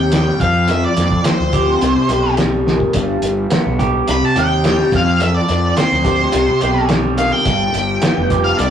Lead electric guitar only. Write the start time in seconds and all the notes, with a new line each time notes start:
Already playing: G5
0.41 F5
0.70 E5
0.84 D5
1.25 C5
4.11 B5
4.25 A5
4.38 G5
4.95 F5
5.22 E5
5.35 D5
5.77 C5
7.18 F5
7.32 G5
8.44 F5
8.58 D5